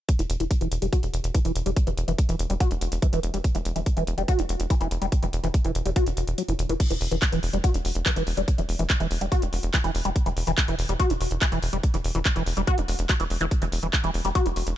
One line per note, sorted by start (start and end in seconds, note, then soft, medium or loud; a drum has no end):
0.09 kick loud
0.09 closed hi-hat medium
0.19 0.26 E1 medium
0.19 0.22 E3 medium
0.19 closed hi-hat medium
0.30 0.37 E1 loud
0.30 closed hi-hat medium
0.40 0.47 E1 medium
0.40 0.45 E3 medium
0.40 closed hi-hat medium
0.51 kick loud
0.51 closed hi-hat medium
0.61 0.68 E1 medium
0.61 0.68 E3 medium
0.61 closed hi-hat soft
0.72 0.79 E1 loud
0.72 closed hi-hat medium
0.82 0.89 E1 medium
0.82 0.87 G3 medium
0.82 closed hi-hat medium
0.93 1.05 F#4 loud
0.93 kick loud
0.93 closed hi-hat medium
1.03 1.10 E1 medium
1.03 1.06 B3 medium
1.03 closed hi-hat medium
1.14 1.21 E1 loud
1.14 closed hi-hat medium
1.24 1.31 E1 medium
1.24 closed hi-hat medium
1.35 1.39 E3 medium
1.35 kick loud
1.35 closed hi-hat medium
1.45 1.52 E1 medium
1.45 1.52 E3 medium
1.45 closed hi-hat medium
1.55 1.63 E1 medium
1.55 closed hi-hat medium
1.66 1.73 E1 medium
1.66 1.71 G3 medium
1.66 closed hi-hat medium
1.76 kick loud
1.76 closed hi-hat medium
1.87 1.94 E1 medium
1.87 1.90 E3 medium
1.87 closed hi-hat medium
1.97 2.05 E1 loud
1.97 closed hi-hat medium
2.08 2.15 E1 medium
2.08 2.13 E3 medium
2.08 closed hi-hat medium
2.18 kick loud
2.18 closed hi-hat medium
2.29 2.36 E1 medium
2.29 2.36 E3 medium
2.29 closed hi-hat medium
2.39 2.47 E1 loud
2.39 closed hi-hat medium
2.50 2.57 E1 medium
2.50 2.55 G3 medium
2.50 closed hi-hat medium
2.60 2.72 F#4 loud
2.60 kick loud
2.60 closed hi-hat medium
2.71 2.78 E1 medium
2.71 2.74 B3 medium
2.71 closed hi-hat medium
2.81 2.89 E1 loud
2.81 closed hi-hat medium
2.92 2.99 E1 medium
2.92 closed hi-hat medium
3.02 3.07 E3 medium
3.02 kick loud
3.02 closed hi-hat medium
3.13 3.20 E1 medium
3.13 3.20 E3 medium
3.13 closed hi-hat medium
3.23 3.31 E1 loud
3.23 closed hi-hat medium
3.34 3.41 E1 medium
3.34 3.39 G3 medium
3.34 closed hi-hat medium
3.44 kick loud
3.44 closed hi-hat medium
3.55 3.62 E1 medium
3.55 3.58 E3 medium
3.55 closed hi-hat medium
3.65 3.73 E1 loud
3.65 closed hi-hat medium
3.76 3.83 E1 medium
3.76 3.81 E3 medium
3.76 closed hi-hat soft
3.86 kick loud
3.86 closed hi-hat medium
3.97 4.04 E1 medium
3.97 4.04 E3 medium
3.97 closed hi-hat soft
4.07 4.15 E1 loud
4.07 closed hi-hat medium
4.18 4.25 E1 medium
4.18 4.22 G3 medium
4.18 closed hi-hat soft
4.28 4.40 F#4 loud
4.28 kick loud
4.28 closed hi-hat medium
4.39 4.46 E1 medium
4.39 4.42 B3 medium
4.39 closed hi-hat medium
4.49 4.57 E1 loud
4.49 closed hi-hat medium
4.60 4.67 E1 medium
4.60 closed hi-hat soft
4.70 4.75 E3 medium
4.70 kick loud
4.70 closed hi-hat medium
4.81 4.88 E1 medium
4.81 4.88 E3 medium
4.81 closed hi-hat medium
4.91 4.98 E1 loud
4.91 closed hi-hat medium
5.02 5.09 E1 medium
5.02 5.06 G3 medium
5.02 closed hi-hat soft
5.12 kick loud
5.12 closed hi-hat medium
5.23 5.30 E1 medium
5.23 5.25 E3 medium
5.23 closed hi-hat soft
5.33 5.40 E1 loud
5.33 closed hi-hat medium
5.44 5.51 E1 medium
5.44 5.48 E3 medium
5.44 closed hi-hat soft
5.54 kick loud
5.54 closed hi-hat medium
5.65 5.72 E1 medium
5.65 5.72 E3 medium
5.65 closed hi-hat soft
5.75 5.82 E1 loud
5.75 closed hi-hat medium
5.86 5.93 E1 medium
5.86 5.90 G3 medium
5.86 closed hi-hat soft
5.96 6.08 F#4 loud
5.96 kick loud
5.96 closed hi-hat medium
6.07 6.14 E1 medium
6.07 6.09 B3 medium
6.07 closed hi-hat soft
6.17 6.24 E1 loud
6.17 closed hi-hat medium
6.28 6.35 E1 medium
6.28 closed hi-hat soft
6.38 6.43 F#3 medium
6.38 closed hi-hat medium
6.48 6.56 E1 medium
6.48 6.53 E3 medium
6.48 closed hi-hat soft
6.59 6.66 E1 loud
6.59 closed hi-hat medium
6.69 6.77 E1 medium
6.69 6.74 E3 loud
6.69 closed hi-hat soft
6.80 kick loud
6.80 closed hi-hat medium
6.80 crash loud
6.90 6.98 E1 medium
6.90 6.93 E3 medium
6.90 closed hi-hat medium
7.01 7.08 E1 loud
7.01 open hi-hat loud
7.11 7.19 E1 medium
7.11 7.16 E3 medium
7.11 closed hi-hat medium
7.22 kick loud
7.22 clap loud
7.22 closed hi-hat medium
7.32 7.40 E1 medium
7.32 7.40 E3 medium
7.32 closed hi-hat medium
7.43 7.50 E1 loud
7.43 open hi-hat medium
7.53 7.61 E1 medium
7.53 7.58 G3 medium
7.53 closed hi-hat medium
7.64 7.76 F#4 loud
7.64 kick loud
7.64 closed hi-hat medium
7.74 7.82 E1 medium
7.74 7.77 B3 medium
7.74 closed hi-hat medium
7.85 7.92 E1 loud
7.85 open hi-hat loud
7.95 8.03 E1 medium
7.95 closed hi-hat medium
8.06 8.11 E3 medium
8.06 kick loud
8.06 clap loud
8.06 closed hi-hat medium
8.16 8.24 E1 medium
8.16 8.23 E3 medium
8.16 closed hi-hat medium
8.27 8.34 E1 loud
8.27 open hi-hat medium
8.37 8.45 E1 medium
8.37 8.42 G3 medium
8.37 closed hi-hat medium
8.48 kick loud
8.48 closed hi-hat medium
8.58 8.66 E1 medium
8.58 8.61 E3 medium
8.58 closed hi-hat medium
8.69 8.76 E1 loud
8.69 open hi-hat loud
8.79 8.87 E1 medium
8.79 8.84 E3 medium
8.79 closed hi-hat medium
8.90 kick loud
8.90 clap loud
8.90 closed hi-hat medium
9.00 9.08 E1 medium
9.00 9.07 E3 medium
9.00 closed hi-hat medium
9.11 9.18 E1 loud
9.11 open hi-hat loud
9.21 9.29 E1 medium
9.21 9.26 G3 medium
9.21 closed hi-hat medium
9.32 9.44 F#4 loud
9.32 kick loud
9.32 closed hi-hat medium
9.42 9.50 E1 medium
9.42 9.45 B3 medium
9.42 closed hi-hat medium
9.53 9.60 E1 loud
9.53 open hi-hat loud
9.63 9.71 E1 medium
9.63 closed hi-hat medium
9.74 9.78 E3 medium
9.74 kick loud
9.74 clap loud
9.74 closed hi-hat medium
9.84 9.92 E1 medium
9.84 9.91 E3 medium
9.84 closed hi-hat medium
9.95 10.02 E1 loud
9.95 open hi-hat medium
10.05 10.12 E1 medium
10.05 10.10 G3 medium
10.05 closed hi-hat medium
10.16 kick loud
10.16 closed hi-hat medium
10.26 10.33 E1 medium
10.26 10.29 E3 medium
10.26 closed hi-hat soft
10.37 10.44 E1 loud
10.37 open hi-hat loud
10.47 10.54 E1 medium
10.47 10.52 E3 medium
10.47 closed hi-hat medium
10.58 kick loud
10.58 clap loud
10.58 closed hi-hat medium
10.68 10.75 E1 medium
10.68 10.75 E3 medium
10.68 closed hi-hat soft
10.79 10.86 E1 loud
10.79 open hi-hat loud
10.89 10.96 E1 medium
10.89 10.94 G3 medium
10.89 closed hi-hat medium
11.00 11.12 F#4 loud
11.00 kick loud
11.00 closed hi-hat medium
11.10 11.17 E1 medium
11.10 11.13 B3 medium
11.10 closed hi-hat soft
11.21 11.28 E1 loud
11.21 open hi-hat loud
11.31 11.38 E1 medium
11.31 closed hi-hat medium
11.41 11.46 E3 medium
11.41 kick loud
11.41 clap loud
11.41 closed hi-hat medium
11.52 11.59 E1 medium
11.52 11.59 E3 medium
11.52 closed hi-hat medium
11.62 11.70 E1 loud
11.62 open hi-hat medium
11.73 11.80 E1 medium
11.73 11.78 G3 medium
11.73 closed hi-hat medium
11.83 kick loud
11.83 closed hi-hat medium
11.94 12.01 E1 medium
11.94 11.97 E3 medium
11.94 closed hi-hat soft
12.04 12.12 E1 loud
12.04 open hi-hat loud
12.15 12.22 E1 medium
12.15 12.20 E3 medium
12.15 closed hi-hat soft
12.25 kick loud
12.25 clap loud
12.25 closed hi-hat medium
12.36 12.43 E1 medium
12.36 12.43 E3 medium
12.36 closed hi-hat soft
12.46 12.54 E1 loud
12.46 open hi-hat medium
12.57 12.64 E1 medium
12.57 12.62 G3 medium
12.57 closed hi-hat soft
12.67 12.79 F#4 loud
12.67 kick loud
12.67 closed hi-hat medium
12.78 12.85 E1 medium
12.78 12.81 B3 medium
12.78 closed hi-hat soft
12.88 12.96 E1 loud
12.88 open hi-hat loud
12.99 13.06 E1 medium
12.99 closed hi-hat soft
13.09 13.14 F#3 medium
13.09 kick loud
13.09 clap loud
13.09 closed hi-hat medium
13.20 13.27 E1 medium
13.20 13.25 E3 medium
13.20 closed hi-hat medium
13.30 13.38 E1 loud
13.30 open hi-hat medium
13.41 13.48 E1 medium
13.41 13.46 E3 loud
13.41 closed hi-hat soft
13.51 kick loud
13.51 closed hi-hat medium
13.62 13.69 E1 medium
13.62 13.65 E3 medium
13.62 closed hi-hat medium
13.72 13.80 E1 loud
13.72 open hi-hat loud
13.83 13.90 E1 medium
13.83 13.88 E3 medium
13.83 closed hi-hat soft
13.93 kick loud
13.93 clap loud
13.93 closed hi-hat medium
14.04 14.11 E1 medium
14.04 14.11 E3 medium
14.04 closed hi-hat soft
14.14 14.22 E1 loud
14.14 open hi-hat medium
14.25 14.32 E1 medium
14.25 14.29 G3 medium
14.25 closed hi-hat soft
14.35 14.47 F#4 loud
14.35 kick loud
14.35 closed hi-hat medium
14.46 14.53 E1 medium
14.46 14.49 B3 medium
14.46 closed hi-hat medium
14.56 14.64 E1 loud
14.56 open hi-hat loud
14.67 14.74 E1 medium
14.67 closed hi-hat medium